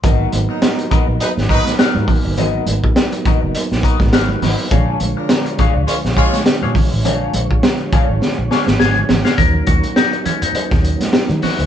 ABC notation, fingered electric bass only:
X:1
M:4/4
L:1/16
Q:"Swing 16ths" 1/4=103
K:Abmix
V:1 name="Fingered electric bass" clef=bass
A,,,2 A,,, z4 B,,, z A,,,2 z2 A,, z =G,,, | A,,,2 A,,, z4 G,,, z B,,, z A,,, A,,,2 A,,, z | B,,,2 B,,, z4 ^C,, z B,,,2 z2 B,, z =A,,, | B,,,2 B,,, z4 A,,, z B,,, z A,,, A,,,2 A,,, z |
E,,2 E,, z4 G,, z E,,2 z2 E, z =D,, |]